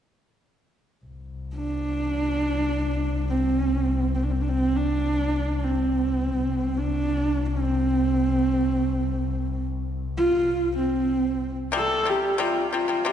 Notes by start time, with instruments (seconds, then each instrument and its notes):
1.05 double bass C2
1.56 horsehead fiddle D4
3.30 horsehead fiddle C4
4.15 horsehead fiddle C4
4.23 horsehead fiddle D4
4.31 horsehead fiddle C4
4.41 horsehead fiddle D4
4.49 horsehead fiddle C4
4.76 horsehead fiddle D4
5.64 horsehead fiddle C4
6.39 double bass C2
6.77 horsehead fiddle D4
7.46 horsehead fiddle C4
10.18 horsehead fiddle F4
10.77 horsehead fiddle C4
11.72 pipa C3 G3
11.76 horsehead fiddle A4
12.05 pipa C3 G3, horsehead fiddle G4
12.33 horsehead fiddle G4
12.38 pipa C3 G3, horsehead fiddle F4
12.73 pipa C3 G3, horsehead fiddle F4
12.88 pipa C3 G3
13.05 pipa C3 G3, horsehead fiddle G4